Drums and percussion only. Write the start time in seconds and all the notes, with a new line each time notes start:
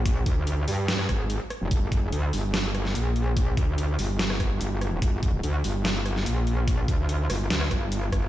0.06 kick, closed hi-hat
0.26 kick, closed hi-hat
0.47 closed hi-hat
0.68 open hi-hat
0.88 snare, closed hi-hat
0.99 cross-stick, snare
1.09 kick, cross-stick, closed hi-hat
1.30 closed hi-hat
1.50 cross-stick, closed hi-hat
1.71 kick, closed hi-hat
1.92 kick, closed hi-hat
2.12 closed hi-hat
2.33 open hi-hat
2.54 snare, closed hi-hat
2.75 cross-stick, closed hi-hat
2.85 snare
2.95 closed hi-hat
3.16 closed hi-hat
3.37 kick, closed hi-hat
3.57 kick, closed hi-hat
3.78 closed hi-hat
3.99 open hi-hat
4.19 snare, closed hi-hat
4.30 cross-stick, snare
4.40 kick, cross-stick, closed hi-hat
4.61 closed hi-hat
4.81 cross-stick, closed hi-hat
5.02 kick, closed hi-hat
5.23 kick, closed hi-hat
5.43 closed hi-hat
5.64 open hi-hat
5.85 snare, closed hi-hat
6.06 cross-stick, closed hi-hat
6.16 snare
6.26 closed hi-hat
6.47 closed hi-hat
6.68 kick, closed hi-hat
6.88 kick, closed hi-hat
7.09 closed hi-hat
7.30 cross-stick, open hi-hat
7.50 snare, closed hi-hat
7.61 cross-stick, snare
7.71 kick, cross-stick, closed hi-hat
7.92 closed hi-hat
8.12 kick, cross-stick, closed hi-hat